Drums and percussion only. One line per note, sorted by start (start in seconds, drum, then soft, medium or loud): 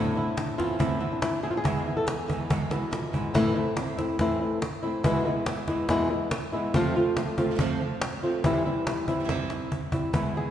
0.37 cajon slap medium
0.60 cajon bass medium
0.60 cajon slap soft
0.80 cajon bass medium
1.22 cajon slap loud
1.44 cajon slap soft
1.65 cajon bass loud
2.08 cajon slap loud
2.30 cajon bass medium
2.50 cajon bass loud
2.71 cajon slap medium
2.93 cajon slap loud
3.14 cajon bass medium
3.35 cajon bass medium
3.77 cajon slap medium
3.99 cajon bass medium
3.99 cajon slap soft
4.19 cajon bass loud
4.19 cajon slap soft
4.62 cajon slap loud
5.04 cajon bass loud
5.46 cajon slap loud
5.68 cajon bass medium
5.68 cajon slap soft
5.89 cajon bass loud
5.89 cajon slap soft
6.31 cajon slap loud
6.74 cajon bass loud
7.17 cajon slap medium
7.38 cajon bass medium
7.59 cajon bass loud
8.02 cajon slap loud
8.44 cajon bass loud
8.87 cajon slap loud
9.08 cajon bass medium
9.29 cajon bass loud
9.29 cajon slap soft
9.50 cajon slap medium
9.72 cajon bass medium
9.92 cajon bass medium
10.14 cajon bass medium